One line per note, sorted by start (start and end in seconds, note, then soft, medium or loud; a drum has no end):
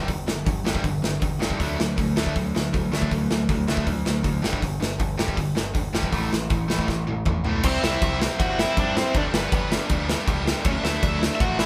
0.08 0.24 G1 medium
0.08 0.25 G2 medium
0.08 0.25 D3 medium
0.08 kick medium
0.08 open hi-hat soft
0.26 0.44 G1 medium
0.26 0.44 G2 medium
0.26 0.44 D3 medium
0.26 snare loud
0.46 0.63 G1 medium
0.46 0.63 G2 medium
0.46 0.63 D3 medium
0.46 kick loud
0.46 open hi-hat soft
0.64 0.82 G1 medium
0.64 0.82 G2 medium
0.64 0.83 D3 medium
0.64 0.83 G3 medium
0.64 snare loud
0.75 kick medium
0.83 1.00 G1 medium
0.83 1.00 G2 medium
0.83 1.01 D3 medium
0.83 kick medium
0.83 open hi-hat medium
1.02 1.20 G1 medium
1.02 1.18 G2 medium
1.02 1.19 D3 medium
1.02 snare loud
1.20 1.38 G1 medium
1.20 1.38 G2 medium
1.20 1.38 D3 medium
1.20 kick loud
1.20 open hi-hat medium
1.39 1.58 G1 medium
1.39 1.58 G2 medium
1.39 1.57 D3 medium
1.39 1.58 G3 medium
1.39 snare medium
1.50 kick medium
1.58 1.76 D2 medium
1.58 1.77 D3 medium
1.58 1.77 F#3 medium
1.58 1.77 A3 medium
1.58 1.78 D4 medium
1.58 kick medium
1.58 open hi-hat soft
1.78 1.95 D2 medium
1.78 1.96 D3 medium
1.78 1.95 F#3 medium
1.78 1.96 A3 medium
1.78 snare loud
1.98 2.14 D2 medium
1.98 2.15 D3 medium
1.98 2.15 F#3 medium
1.98 2.14 A3 medium
1.98 kick loud
1.98 open hi-hat medium
2.17 2.33 D2 medium
2.17 2.34 D3 medium
2.17 2.35 F#3 medium
2.17 2.35 A3 medium
2.17 2.34 D4 medium
2.17 snare loud
2.26 kick medium
2.36 2.52 D2 medium
2.36 2.52 D3 medium
2.36 2.53 F#3 medium
2.36 2.53 A3 medium
2.36 kick medium
2.36 open hi-hat medium
2.55 2.71 D2 medium
2.55 2.71 D3 medium
2.55 2.71 F#3 medium
2.55 2.72 A3 medium
2.55 snare medium
2.73 2.90 D2 medium
2.73 2.90 D3 medium
2.73 2.90 F#3 medium
2.73 2.91 A3 medium
2.73 kick loud
2.73 open hi-hat soft
2.92 3.08 D2 medium
2.92 3.10 D3 medium
2.92 3.10 F#3 medium
2.92 3.11 A3 medium
2.92 3.10 D4 medium
2.92 snare medium
3.02 kick medium
3.11 3.28 D2 medium
3.11 3.28 D3 medium
3.11 3.28 F#3 medium
3.11 3.28 A3 medium
3.11 kick medium
3.11 open hi-hat soft
3.30 3.47 D2 medium
3.30 3.47 D3 medium
3.30 3.47 F#3 medium
3.30 3.47 A3 medium
3.30 snare loud
3.49 3.65 D2 medium
3.49 3.66 D3 medium
3.49 3.66 F#3 medium
3.49 3.66 A3 medium
3.49 kick loud
3.49 open hi-hat soft
3.68 3.85 D2 medium
3.68 3.85 D3 medium
3.68 3.86 F#3 medium
3.68 3.86 A3 medium
3.68 3.86 D4 medium
3.68 snare loud
3.77 kick medium
3.87 4.03 D2 medium
3.87 4.04 D3 medium
3.87 4.04 F#3 medium
3.87 4.04 A3 medium
3.87 kick medium
3.87 open hi-hat medium
4.06 4.22 D2 medium
4.06 4.23 D3 medium
4.06 4.23 F#3 medium
4.06 4.22 A3 medium
4.06 snare loud
4.23 4.41 D2 medium
4.23 4.41 D3 medium
4.23 4.42 F#3 medium
4.23 4.41 A3 medium
4.23 kick medium
4.23 open hi-hat medium
4.43 4.60 G1 medium
4.43 4.60 G2 medium
4.43 4.61 D3 medium
4.43 4.61 G3 medium
4.43 snare medium
4.53 kick medium
4.62 4.79 G1 medium
4.62 4.79 G2 medium
4.62 4.79 D3 medium
4.62 kick medium
4.62 open hi-hat medium
4.81 4.98 G1 medium
4.81 4.97 G2 medium
4.81 4.98 D3 medium
4.81 snare loud
4.99 5.16 G1 medium
4.99 5.16 G2 medium
4.99 5.16 D3 medium
4.99 kick loud
4.99 open hi-hat medium
5.18 5.35 G1 medium
5.18 5.35 G2 loud
5.18 5.36 D3 medium
5.18 5.37 G3 medium
5.18 snare loud
5.28 kick medium
5.37 5.54 G1 medium
5.37 5.54 G2 medium
5.37 5.54 D3 medium
5.37 kick medium
5.37 open hi-hat medium
5.56 5.73 G1 medium
5.56 5.73 G2 medium
5.56 5.74 D3 medium
5.56 snare medium
5.75 5.91 G1 medium
5.75 5.92 G2 medium
5.75 5.92 D3 medium
5.75 kick medium
5.75 open hi-hat medium
5.93 6.11 G#1 medium
5.93 6.12 G2 medium
5.93 6.12 D3 medium
5.93 6.12 G3 medium
5.93 snare loud
6.03 kick medium
6.12 6.29 A1 medium
6.12 6.30 A2 medium
6.12 6.31 E3 medium
6.12 6.31 A3 medium
6.12 kick medium
6.12 open hi-hat soft
6.31 6.48 A1 medium
6.31 6.49 A2 medium
6.31 6.49 E3 medium
6.31 snare medium
6.50 6.67 A1 medium
6.50 6.68 A2 medium
6.50 6.68 E3 medium
6.50 kick loud
6.50 open hi-hat soft
6.70 6.87 A1 medium
6.70 6.88 A2 medium
6.70 6.88 E3 medium
6.70 6.88 A3 medium
6.70 snare loud
6.79 kick medium
6.88 7.05 A1 medium
6.88 7.06 A2 medium
6.88 7.06 E3 medium
6.88 kick medium
6.88 snare medium
7.07 7.24 A1 medium
7.07 7.24 A2 medium
7.07 7.25 E3 medium
7.07 high tom medium
7.25 7.42 A1 medium
7.25 7.43 A2 medium
7.25 7.43 E3 medium
7.25 kick loud
7.25 mid tom medium
7.44 7.61 B1 medium
7.44 7.62 A2 medium
7.44 7.63 E3 medium
7.44 7.63 A3 medium
7.44 floor tom medium
7.63 7.77 C2 loud
7.63 7.82 C3 medium
7.63 7.84 G3 loud
7.63 7.83 C4 loud
7.63 7.82 C4 medium
7.63 7.84 E4 loud
7.63 7.84 C5 medium
7.63 kick loud
7.63 crash loud
7.63 crash medium
7.82 7.96 C2 medium
7.82 8.01 C3 medium
7.82 8.02 G3 medium
7.82 8.03 C4 medium
7.82 8.18 E4 medium
7.82 8.03 E4 medium
7.82 8.17 E5 loud
7.82 snare loud
8.02 8.27 C2 medium
8.02 8.20 C3 medium
8.02 8.22 G3 medium
8.02 8.21 C4 medium
8.02 8.21 E4 medium
8.02 kick loud
8.02 crash medium
8.21 8.39 C3 medium
8.21 8.39 G3 medium
8.21 8.40 C4 medium
8.21 8.41 E4 medium
8.21 snare loud
8.40 8.65 G1 medium
8.40 8.57 C3 loud
8.40 8.58 G3 loud
8.40 8.59 C4 loud
8.40 8.59 E4 loud
8.40 8.57 F#4 medium
8.40 8.60 F#5 loud
8.40 kick loud
8.40 crash medium
8.58 8.76 C3 medium
8.58 8.77 G3 medium
8.58 8.77 C4 medium
8.58 8.77 E4 medium
8.58 8.78 E4 loud
8.58 8.78 E5 medium
8.58 snare loud
8.77 9.02 G2 medium
8.77 8.95 C3 medium
8.77 8.96 G3 medium
8.77 8.96 C4 medium
8.77 8.95 D4 medium
8.77 8.97 E4 loud
8.77 8.95 D5 medium
8.77 kick loud
8.77 crash medium
8.96 9.14 C3 loud
8.96 9.14 G3 medium
8.96 9.14 C4 medium
8.96 9.15 E4 loud
8.96 9.16 C5 medium
8.96 snare loud
9.14 9.27 G1 loud
9.14 9.32 G2 medium
9.14 9.32 D3 loud
9.14 9.33 G3 medium
9.14 9.34 B3 loud
9.14 9.21 D4 medium
9.14 9.35 D4 loud
9.14 9.22 D5 loud
9.14 kick loud
9.14 crash medium
9.33 9.46 G1 medium
9.33 9.51 G2 medium
9.33 9.51 D3 medium
9.33 9.52 G3 medium
9.33 9.69 B3 medium
9.33 9.52 B3 loud
9.33 9.54 D4 medium
9.33 9.70 B4 medium
9.33 snare loud
9.52 9.77 G1 medium
9.52 9.69 G2 medium
9.52 9.70 D3 medium
9.52 9.71 G3 loud
9.52 9.71 B3 loud
9.52 9.71 D4 loud
9.52 kick loud
9.52 crash medium
9.70 9.88 G2 medium
9.70 9.89 D3 medium
9.70 9.89 G3 medium
9.70 9.90 B3 medium
9.70 9.90 D4 loud
9.70 snare loud
9.89 10.14 D2 loud
9.89 10.07 G2 medium
9.89 10.07 D3 loud
9.89 10.08 G3 loud
9.89 10.09 B3 loud
9.89 10.09 D4 loud
9.89 kick loud
9.89 crash medium
10.09 10.26 G2 medium
10.09 10.27 D3 medium
10.09 10.28 G3 medium
10.09 10.28 B3 medium
10.09 10.29 D4 medium
10.09 snare loud
10.27 10.52 C#2 loud
10.27 10.44 G2 medium
10.27 10.45 D3 medium
10.27 10.45 G3 medium
10.27 10.46 B3 medium
10.27 10.46 D4 loud
10.27 kick loud
10.27 crash medium
10.45 10.63 G2 medium
10.45 10.61 D3 medium
10.45 10.63 G3 medium
10.45 10.64 B3 loud
10.45 10.64 D4 loud
10.45 snare loud
10.63 10.78 D2 loud
10.63 10.81 D3 loud
10.63 10.81 F#3 loud
10.63 10.83 A3 loud
10.63 10.83 D4 loud
10.63 10.71 C#5 loud
10.63 kick loud
10.63 crash medium
10.67 10.72 C#4 medium
10.83 10.96 D2 medium
10.83 10.99 D3 medium
10.83 11.00 F#3 medium
10.83 11.02 A3 medium
10.83 11.01 D4 loud
10.83 11.19 E4 medium
10.83 11.19 E5 loud
10.83 snare loud
11.00 11.28 D2 medium
11.00 11.18 D3 medium
11.00 11.18 F#3 medium
11.00 11.20 A3 medium
11.00 11.19 D4 loud
11.00 kick loud
11.00 crash medium
11.19 11.38 D3 medium
11.19 11.38 F#3 medium
11.19 11.39 A3 loud
11.19 11.40 D4 loud
11.19 snare loud
11.23 11.40 D3 medium
11.23 11.41 D4 medium
11.35 11.57 D3 loud
11.35 11.40 E5 medium
11.40 11.65 A1 loud
11.40 11.57 F#3 loud
11.40 11.58 A3 loud
11.40 11.58 D4 loud
11.40 11.58 F#4 medium
11.40 11.59 F#5 medium
11.40 kick loud
11.40 crash medium
11.58 11.66 D3 medium
11.58 11.66 F#3 medium
11.58 11.66 A3 loud
11.58 11.66 D4 medium
11.58 11.66 E4 medium
11.58 11.66 E5 medium
11.58 snare loud